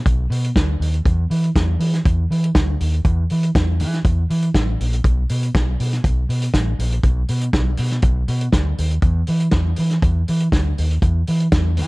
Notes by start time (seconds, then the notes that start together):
0.06 B1, kick, closed hi-hat
0.30 B2, open hi-hat
0.44 closed hi-hat
0.56 D2, kick, snare, closed hi-hat
0.80 D#2, open hi-hat
0.94 closed hi-hat
1.05 E2, kick, closed hi-hat
1.30 E3, open hi-hat
1.44 closed hi-hat
1.56 E2, kick, snare, closed hi-hat
1.79 E3, open hi-hat
1.93 snare, closed hi-hat
2.05 E2, kick, closed hi-hat
2.31 E3, open hi-hat
2.44 closed hi-hat
2.55 D2, kick, snare, closed hi-hat
2.80 D#2, open hi-hat
2.94 closed hi-hat
3.05 E2, kick, closed hi-hat
3.30 E3, open hi-hat
3.43 closed hi-hat
3.55 E2, kick, snare, closed hi-hat
3.80 E3, open hi-hat
3.93 snare, closed hi-hat
4.04 E2, kick, closed hi-hat
4.30 E3, open hi-hat
4.42 closed hi-hat
4.54 A1, kick, snare, closed hi-hat
4.80 A#1, open hi-hat
4.93 closed hi-hat
5.04 B1, kick, closed hi-hat
5.29 B2, open hi-hat
5.43 closed hi-hat
5.55 B1, kick, snare, closed hi-hat
5.80 B2, open hi-hat
5.93 snare, closed hi-hat
6.04 B1, kick, closed hi-hat
6.29 B2, open hi-hat
6.42 closed hi-hat
6.54 A1, kick, snare, closed hi-hat
6.79 A#1, open hi-hat
6.92 closed hi-hat
7.03 B1, kick, closed hi-hat
7.28 B2, open hi-hat
7.41 closed hi-hat
7.53 B1, kick, snare, closed hi-hat
7.77 B2, open hi-hat
7.91 snare, closed hi-hat
8.02 B1, kick, closed hi-hat
8.28 B2, open hi-hat
8.41 closed hi-hat
8.52 D2, kick, snare, closed hi-hat
8.78 D#2, open hi-hat
8.91 closed hi-hat
9.02 E2, kick, closed hi-hat
9.27 E3, open hi-hat
9.40 closed hi-hat
9.51 E2, kick, snare, closed hi-hat
9.76 E3, open hi-hat
9.90 snare, closed hi-hat
10.02 E2, kick, closed hi-hat
10.28 E3, open hi-hat
10.40 closed hi-hat
10.52 D2, kick, snare, closed hi-hat
10.78 D#2, open hi-hat
10.91 closed hi-hat
11.02 E2, kick, closed hi-hat
11.27 E3, open hi-hat
11.40 closed hi-hat
11.52 E2, kick, snare, closed hi-hat
11.77 E3, open hi-hat